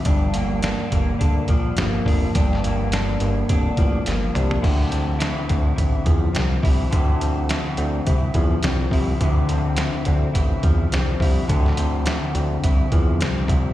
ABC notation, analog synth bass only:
X:1
M:4/4
L:1/16
Q:"Swing 16ths" 1/4=105
K:Dm
V:1 name="Analog synth bass" clef=bass
G,,,4- G,,, z G,,,2 D,,2 B,,,2 G,,,2 F,,,2 | G,,,6 G,,,2 F,,,2 A,,,2 G,,,2 C,,2 | D,,4- D,, z D,,2 A,,,2 E,,2 C,,2 C,,2 | D,,4- D,, z D,,2 C,,2 E,,2 C,,2 C,,2 |
D,,4- D,, z D,,2 A,,,2 E,,2 C,,2 C,,2 | D,,4- D,, z D,,2 C,,2 E,,2 C,,2 C,,2 |]